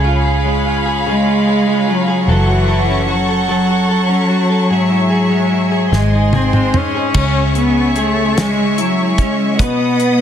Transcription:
Already playing: fingered electric bass C#2, clean electric guitar C#3 G#4, string section G#4 C#5 F5 B5
0.05 clean electric guitar F4
0.25 clean electric guitar G#4
0.45 clean electric guitar G#3
0.66 clean electric guitar F4
0.86 clean electric guitar G#4
1.06 clean electric guitar C#3 G#4, cello G#3
1.26 clean electric guitar F4
1.47 clean electric guitar G#4
1.67 clean electric guitar G#3
1.87 cello F#3, clean electric guitar F4
2.08 clean electric guitar G#4
2.26 fingered electric bass F#1, cello E3, clean electric guitar F#3 A4, string section A4 F#5 C#6
2.48 clean electric guitar F#4
2.69 clean electric guitar A4
2.89 clean electric guitar C#4
3.08 cello F#3, clean electric guitar F#4
3.29 clean electric guitar A4
3.48 clean electric guitar F#3 A4, cello F#3
3.69 clean electric guitar F#4
3.89 clean electric guitar A4
4.09 clean electric guitar C#4
4.30 clean electric guitar F#4
4.50 clean electric guitar A4
4.69 clean electric guitar G#2 G#4, string section G#4 E5
4.90 clean electric guitar E4
5.10 clean electric guitar G#4
5.31 clean electric guitar G#3
5.52 clean electric guitar E4
5.72 clean electric guitar G#4
5.92 fingered electric bass G#1, clean electric guitar G#2 G#4, cello G#3, string section C5 D#5 C6, snare
6.13 clean electric guitar D#4
6.33 cello C4, clean electric guitar G#4, high tom
6.53 clean electric guitar G#3, mid tom
6.74 cello C#4, clean electric guitar D#4, mid tom
6.95 clean electric guitar G#4
7.14 fingered electric bass C#2, clean electric guitar C#3 G#4, string section G#4 C#5 E5 C#6, kick, crash
7.55 cello B3, clean electric guitar C#4, closed hi-hat
7.96 cello A3, clean electric guitar G#4, closed hi-hat
8.37 clean electric guitar G#3, cello G#3, snare, closed hi-hat
8.78 cello F#3, clean electric guitar E4, closed hi-hat
9.18 cello G#3, clean electric guitar C#4, kick, closed hi-hat
9.58 clean electric guitar B2 B4, cello B3, string section B4 D#5 F#5 D#6, kick, closed hi-hat
9.99 clean electric guitar B3, closed hi-hat

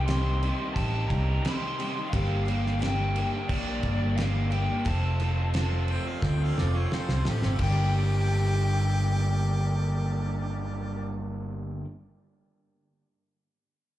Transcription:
Already playing: fingered electric bass C2, tonewheel organ D#4 G4 C5 D5, overdriven electric guitar G4
0.06 overdriven electric guitar C3 D#3 G3, steel-string acoustic guitar C4, lead electric guitar C6, snare, crash
0.10 overdriven electric guitar D#4 G4
0.42 overdriven electric guitar D#3 G3 D#4 G4, crash
0.60 overdriven electric guitar G3 D#4 G4
0.74 fingered electric bass A1, lead electric guitar A5, kick, crash
0.94 overdriven electric guitar G3 D#4 G4
1.08 fingered electric bass C2, steel-string acoustic guitar C4 G4, lead electric guitar A#5, kick, crash
1.13 steel-string acoustic guitar G3
1.29 overdriven electric guitar G3 D#4 G4
1.43 overdriven electric guitar C3 D#3 G3 D#4, steel-string acoustic guitar C4, lead electric guitar C6, snare, crash
1.48 overdriven electric guitar G4
1.62 overdriven electric guitar G3 D#4 G4
1.79 overdriven electric guitar D#3 G3 D#4 G4, steel-string acoustic guitar C4, crash
1.97 overdriven electric guitar G3 D#4 G4
2.10 fingered electric bass G1, overdriven electric guitar G2 D3, tonewheel organ D4 G4 A#4 D5, lead electric guitar F5, kick, crash
2.14 overdriven electric guitar G3 A#3 D4 G4
2.45 overdriven electric guitar G3 A#3, steel-string acoustic guitar G4, crash
2.50 overdriven electric guitar D4 G4
2.64 overdriven electric guitar G3 A#3 D4 G4, snare
2.79 overdriven electric guitar G2 D3, steel-string acoustic guitar G3, lead electric guitar G5, snare, crash
2.83 overdriven electric guitar G3 A#3 D4 G4
3.15 overdriven electric guitar G3 A#3 D4 G4, crash
3.33 overdriven electric guitar G3 A#3 D4 G4
3.48 fingered electric bass A#1, lead electric guitar D5, kick, crash
3.67 overdriven electric guitar G3 A#3 D4 G4
3.83 fingered electric bass G1, steel-string acoustic guitar G3 A#3 D4 G4, kick, crash
4.00 overdriven electric guitar G3 A#3 D4 G4
4.16 overdriven electric guitar G2 D3 G3 A#3, lead electric guitar F5, snare, crash
4.21 overdriven electric guitar D4 G4
4.35 overdriven electric guitar G3 A#3 D4 G4
4.51 overdriven electric guitar G3 A#3, steel-string acoustic guitar D4 G4, lead electric guitar G5, crash
4.55 overdriven electric guitar D4 G4
4.70 overdriven electric guitar G3 A#3 D4 G4
4.85 fingered electric bass F1, overdriven electric guitar F2 C3 F3 A3 C4 F4, tonewheel organ C4 F4 A4 C5, steel-string acoustic guitar A4, lead electric guitar A5, kick, crash
5.20 overdriven electric guitar F3 A3 C4 F4, steel-string acoustic guitar A4, crash
5.37 overdriven electric guitar F3 A3 C4 F4
5.54 overdriven electric guitar F2 C3 F3 A3 C4 F4, steel-string acoustic guitar A4, snare, crash
5.88 overdriven electric guitar F3 A3 C4 F4, harmonica G5, crash
6.05 overdriven electric guitar F3 A3 C4 F4, harmonica F5
6.22 fingered electric bass D2, harmonica G5, kick, snare
6.40 overdriven electric guitar F3 A3 C4 F4, harmonica F5
6.57 fingered electric bass F1, steel-string acoustic guitar C4 F4 A4, harmonica D5, snare
6.74 overdriven electric guitar F3 A3 C4 F4, harmonica C#5
6.91 overdriven electric guitar F2 C3 F3 A3 C4 F4, steel-string acoustic guitar A4, harmonica C5, snare
7.08 fingered electric bass C2, overdriven electric guitar F3 A3 C4 F4, snare
7.25 fingered electric bass A1, overdriven electric guitar F3 A3 C4 F4, harmonica G4, steel-string acoustic guitar A4, snare
7.42 fingered electric bass G1, overdriven electric guitar F3 A3 C4 F4, snare
7.59 fingered electric bass G1, overdriven electric guitar G2 D3 G3 A#3 D4, tonewheel organ D4 G4 A#4 D5, lead electric guitar G5, kick, crash
7.63 steel-string acoustic guitar A#3, overdriven electric guitar G4, harmonica G4
7.69 steel-string acoustic guitar D4 G4

